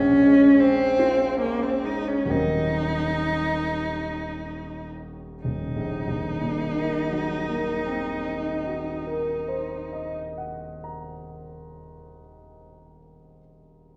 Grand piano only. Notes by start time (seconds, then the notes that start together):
Already playing: A#1
0.22 G#3
0.60 C#4
0.99 F4
1.40 C#4
1.84 G#3
2.26 D#2 F#3 A#3 C4 D#4
2.30 D#1
5.45 D#1
5.75 A#1
6.07 D#2
6.41 A#2
6.75 D#3
7.09 F#3
7.48 A#3
7.86 C4
8.26 D#4
8.66 F#4
9.07 A#4
9.48 C5
9.93 D#5
10.38 F#5
10.84 A#5